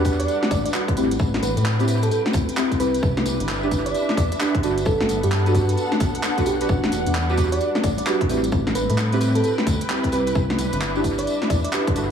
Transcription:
Already playing: E2 G3 D4 B4 F#5
0.05 D4 F#4 G4 B4, kick, open hi-hat, tambourine
0.19 D5, closed hi-hat, tambourine
0.28 closed hi-hat, tambourine
0.43 snare
0.51 A1 D5, kick, open hi-hat, tambourine
0.65 D5, closed hi-hat, tambourine
0.73 D4 F#4 G4 B4, clap, tambourine
0.88 kick, closed hi-hat
0.97 A1 C4 E4 G4 B4, open hi-hat, tambourine
1.05 B4
1.11 closed hi-hat, tambourine
1.19 A1, kick, tambourine
1.34 snare
1.43 A1 B4, open hi-hat, tambourine
1.57 A2 B4, closed hi-hat, tambourine
1.65 clap, tambourine
1.73 G5
1.79 C4 E4 G4 B4, closed hi-hat, tambourine
1.88 C4 E4 G4 B4, open hi-hat, tambourine
2.02 A4, closed hi-hat, tambourine
2.11 A4, closed hi-hat, tambourine
2.26 snare
2.33 D2, kick, open hi-hat, tambourine
2.48 closed hi-hat, tambourine
2.57 C4 E4 G4 B4, clap, tambourine
2.71 kick, closed hi-hat, tambourine
2.80 C2 C4 E4 G4 B4, open hi-hat, tambourine
2.94 closed hi-hat, tambourine
3.03 C2 D4 G4, kick, tambourine
3.17 snare
3.26 C2, open hi-hat, tambourine
3.40 G1, closed hi-hat, tambourine
3.46 E5, clap, tambourine
3.63 D4 E4 G4 B4, tambourine
3.71 D4 E4 G4 B4, kick, open hi-hat, tambourine
3.86 D5, closed hi-hat, tambourine
3.94 closed hi-hat, tambourine
4.09 snare
4.17 E2 D5, kick, open hi-hat, tambourine
4.32 D5, closed hi-hat, tambourine
4.40 D4 E4 G4 B4, clap, tambourine
4.55 kick, closed hi-hat
4.63 G1 B3 D4 F#4 A4 B4 F#5, open hi-hat, tambourine
4.78 closed hi-hat, tambourine
4.85 G1 A4, kick, tambourine
4.93 F#5
4.97 A4, snare
5.09 G1, open hi-hat, tambourine
5.23 G2 G4, closed hi-hat, tambourine
5.32 clap, tambourine
5.46 D4 F#4 A4 B4, closed hi-hat, tambourine
5.55 D4 F#4 A4 B4, kick, open hi-hat, tambourine
5.69 closed hi-hat, tambourine
5.77 closed hi-hat, tambourine
5.92 snare
6.00 B1, kick, open hi-hat, tambourine
6.15 closed hi-hat, tambourine
6.23 clap, tambourine
6.38 D4 F#4 A4 B4, kick, closed hi-hat, tambourine
6.46 B1 G4, open hi-hat, tambourine
6.61 D4 F#4 G4 B4, closed hi-hat, tambourine
6.69 E1 G3 D4, kick, tambourine
6.84 snare
6.92 E1, open hi-hat, tambourine
7.06 E2 G3, closed hi-hat, tambourine
7.14 clap, tambourine
7.29 D4 F#4 G4 B4, tambourine
7.37 D4 F#4 G4 B4, kick, open hi-hat, tambourine
7.52 D5, closed hi-hat, tambourine
7.60 closed hi-hat, tambourine
7.75 snare
7.83 A1 D5, kick, open hi-hat, tambourine
7.98 D5, closed hi-hat, tambourine
8.06 D4 F#4 G4 B4, clap, tambourine
8.21 kick, closed hi-hat
8.29 A1 C4 E4 G4 B4, open hi-hat, tambourine
8.44 closed hi-hat, tambourine
8.52 A1, kick, tambourine
8.60 B4
8.67 snare
8.75 A1 B4, open hi-hat, tambourine
8.90 A2 B4, closed hi-hat, tambourine
8.94 G5, clap, tambourine
9.12 C4 E4 G4 B4, closed hi-hat, tambourine
9.21 C4 E4 G4 B4, open hi-hat, tambourine
9.35 A4, closed hi-hat, tambourine
9.44 A4, closed hi-hat, tambourine
9.58 snare
9.67 D2, kick, open hi-hat, tambourine
9.81 closed hi-hat, tambourine
9.90 C4 E4 G4 B4, clap, tambourine
10.04 kick, closed hi-hat, tambourine
10.12 C2 C4 E4 G4 B4, open hi-hat, tambourine
10.27 closed hi-hat, tambourine
10.35 C2 D4 B4, kick, tambourine
10.50 E5, snare
10.58 C2, open hi-hat, tambourine
10.73 G1, closed hi-hat, tambourine
10.81 clap, tambourine
10.95 D4 E4 G4 B4, tambourine
11.04 D4 E4 G4 B4, kick, open hi-hat, tambourine
11.18 D5, closed hi-hat, tambourine
11.27 closed hi-hat, tambourine
11.42 snare
11.50 E2 D5, kick, open hi-hat, tambourine
11.64 D5, closed hi-hat, tambourine
11.73 D4 E4 G4 B4, clap, tambourine
11.87 kick, closed hi-hat
11.96 G1 B3 D4 F#4 A4 B4 F#5, open hi-hat, tambourine

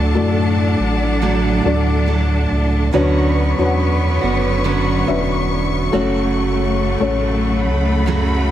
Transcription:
Already playing: D2 A2 D3 F#3 A3 D4 F#4 A4 D5 F#5 A5
0.14 F#2 A3 D4 F#4 A4 D5
0.79 A1
1.22 D3 F#3 A3 D4 A4
1.65 D2 A3 D4 F#4 A4 D5
2.06 F#3 A3 D4 A4
2.51 C#2
2.92 D2 F#2 D3 F#3 B3 C#4 D4 F#4 B4 C#5 C#6
3.58 E2 D4 F#4 B4 C#5
3.65 F#5
4.21 F#1 B3 C#4 F#4
4.64 D3 F#3 B3 C#4 F#4
5.07 E1 C#4 D4 F#4 B4 E5
5.92 F#1 F#2 C#3 F#3 A3 C#4 F#4 A4 C#5 F#5
7.00 A1 A3 C#4 F#4 A4 C#5
7.65 C#2 B5
8.06 F#2 C#3 F#3 A3 C#4 F#4

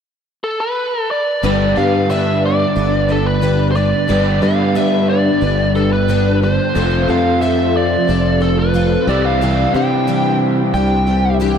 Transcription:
0.44 A4
0.60 B4
1.11 D5
1.43 G1 G2 D3 G3 B3 D4 G4 B4
1.76 G2 G3 B3 D4 B4 F5
2.10 G2 D3 G3 B3 D4 B4 E5
2.46 D5
2.76 G1 G3 B3 D4 B4
3.09 G3 B3 D4 A4 B4
3.26 B4
3.41 G2 D3 G3 B3 D4 B4
3.72 B4 C5
3.76 G3 B3 D4 D5
4.08 G1 G2 D3 G3 B3 D4 G4 B4
4.42 G2 G3 B3 D4 B4 F5
4.75 G2 D3 G3 B3 D4 B4 E5
5.10 D5
5.41 G1 G3 B3 D4 B4
5.75 G3 B3 D4 A4 B4
5.93 B4
6.08 G2 D3 G3 B3 D4 B4
6.42 G3 D4 C5
6.74 F1 F2 C3 F3 A3 C4 F4 A4
7.08 F2 C4 F4 A4 F5
7.41 F3 C4 F4 A4 E5
7.77 D5
8.07 F1 F3 C4 F4 A4
8.41 C4 F4 A4
8.59 B4
8.74 F3 C4 F4 A4
9.07 C2 C3 E3 G3 C4 D4 E4 G4 D5
9.26 F5
9.41 C3 E3 G3 C4 D4 G4
9.74 C3 G3 C4 D4 G4 G5
10.07 C3 E3 G3 C4 D4 G4
10.74 C2 G3 C4 D4 G4 G5
11.07 G3 C4 D4 G4
11.40 C3 E3 G3 C4 D4 G4

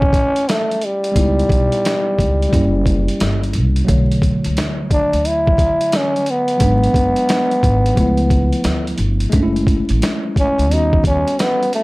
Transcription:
Already playing: A1 A3 C#4 E4 G#5
0.02 kick
0.13 kick, closed hi-hat
0.36 closed hi-hat
0.49 A3, snare, closed hi-hat
0.71 closed hi-hat
0.82 G3, closed hi-hat
1.04 closed hi-hat
1.12 C#2 G3 B3
1.16 D#4 E4, kick, closed hi-hat
1.39 closed hi-hat
1.49 B1, kick, closed hi-hat
1.72 closed hi-hat
1.85 snare, closed hi-hat
2.19 C#2, kick, closed hi-hat
2.42 closed hi-hat
2.49 G3 A#3, kick
2.53 F#1 C#4 E4, closed hi-hat
2.86 kick, closed hi-hat
3.08 closed hi-hat
3.20 G1, snare, closed hi-hat
3.43 closed hi-hat
3.53 C2, closed hi-hat
3.76 closed hi-hat
3.85 B1 F#3 A3 C#5, kick, closed hi-hat
3.91 D3
4.12 closed hi-hat
4.22 kick, closed hi-hat
4.44 C#2, closed hi-hat
4.57 snare, closed hi-hat
4.91 D4, kick, closed hi-hat
5.13 D2, closed hi-hat
5.25 E4, closed hi-hat
5.47 kick
5.58 kick, closed hi-hat
5.81 closed hi-hat
5.92 snare, closed hi-hat
5.96 C#4
6.16 closed hi-hat
6.26 closed hi-hat
6.31 B3
6.48 closed hi-hat
6.57 G#1 F#3 G#3, kick, closed hi-hat
6.61 B3 D4
6.84 closed hi-hat
6.94 F#1, kick, closed hi-hat
7.16 closed hi-hat
7.29 snare, closed hi-hat
7.51 closed hi-hat
7.63 G#1, kick, closed hi-hat
7.86 closed hi-hat
7.94 C#2 F3 A3, kick, closed hi-hat
7.98 B3 E4
8.17 closed hi-hat
8.30 kick, closed hi-hat
8.53 closed hi-hat
8.64 D2, snare, closed hi-hat
8.87 closed hi-hat
8.98 G1, closed hi-hat
9.20 closed hi-hat
9.30 F#1 G#3 A3, kick, closed hi-hat
9.34 C#4 D4
9.43 E4
9.56 closed hi-hat
9.67 kick, closed hi-hat
9.89 A1, closed hi-hat
10.02 snare, closed hi-hat
10.36 C#4, kick, closed hi-hat
10.58 C#2, closed hi-hat
10.67 D#2 G3 B3 C#4, closed hi-hat
10.73 D#4 F#4
10.93 kick
11.04 C#4, kick, closed hi-hat
11.28 closed hi-hat
11.39 B3, snare, closed hi-hat
11.63 closed hi-hat
11.73 A3, closed hi-hat

